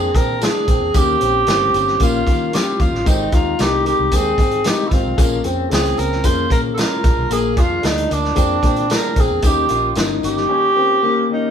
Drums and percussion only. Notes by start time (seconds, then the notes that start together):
0.15 kick, closed hi-hat, tambourine
0.41 snare, closed hi-hat, tambourine
0.68 kick, closed hi-hat, tambourine
0.94 kick, closed hi-hat, tambourine
1.21 closed hi-hat, tambourine
1.47 snare, closed hi-hat, tambourine
1.74 closed hi-hat, tambourine
1.87 snare
2.00 kick, closed hi-hat, tambourine
2.27 kick, closed hi-hat, tambourine
2.53 snare, closed hi-hat, tambourine
2.80 kick, closed hi-hat, tambourine
2.95 snare
3.06 kick, closed hi-hat, tambourine
3.32 kick, closed hi-hat, tambourine
3.59 snare, closed hi-hat, tambourine
3.86 closed hi-hat, tambourine
4.11 kick, closed hi-hat, tambourine
4.38 kick, closed hi-hat, tambourine
4.51 closed hi-hat
4.64 snare, closed hi-hat, tambourine
4.91 kick, closed hi-hat, tambourine
5.18 kick, closed hi-hat, tambourine
5.44 closed hi-hat, tambourine
5.71 snare, closed hi-hat, tambourine
5.85 closed hi-hat
5.97 closed hi-hat, tambourine
6.12 snare
6.24 kick, closed hi-hat, tambourine
6.50 kick, closed hi-hat, tambourine
6.77 snare, closed hi-hat, tambourine
7.04 kick, closed hi-hat, tambourine
7.31 closed hi-hat, tambourine
7.57 kick, closed hi-hat, tambourine
7.83 snare, closed hi-hat, tambourine
7.98 closed hi-hat
8.11 closed hi-hat, tambourine
8.24 snare
8.36 kick, closed hi-hat, tambourine
8.63 kick, closed hi-hat, tambourine
8.76 closed hi-hat
8.90 snare, closed hi-hat, tambourine
9.16 kick, closed hi-hat, tambourine
9.42 kick, closed hi-hat, tambourine
9.69 closed hi-hat, tambourine
9.95 snare, closed hi-hat, tambourine
10.23 closed hi-hat, tambourine
10.37 snare